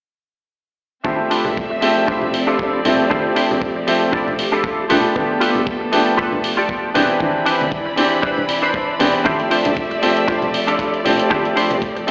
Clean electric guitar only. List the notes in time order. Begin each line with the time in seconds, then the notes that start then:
1.05 D4 E4 F4 G4 C5
1.30 D4 E4 F4 G4 B4
1.70 muted clean electric guitar stroke
2.07 D4 E4 F4 G4 C5
2.47 D4 E4 F4 G4 A4
3.10 D4 E4 F4 G4 C5
3.35 D4 E4 F4 G4 C5
3.75 muted clean electric guitar stroke
4.12 D4 E4 F4 G4 D5
4.52 D4 E4 F4 G4 A4
4.89 F4 G4 A4 B4
5.41 F4 G4 A4 B4
5.80 muted clean electric guitar stroke
6.17 F4 G4 A4 B4
6.57 F4 G4 A4 D5
6.94 D4 E4 B4 C5
7.46 D4 E4 B4 C5
7.85 muted clean electric guitar stroke
8.22 D4 E4 B4 C5
8.62 D4 E4 B4 C5
9.25 D4 E4 F4 G4 C5
9.50 D4 E4 F4 G4 C5
9.90 muted clean electric guitar stroke
10.28 D4 E4 F4 G4 C5
10.67 D4 E4 F4 G4 A4
11.30 D4 E4 F4 G4 C5
11.56 D4 E4 F4 G4 C5
11.95 muted clean electric guitar stroke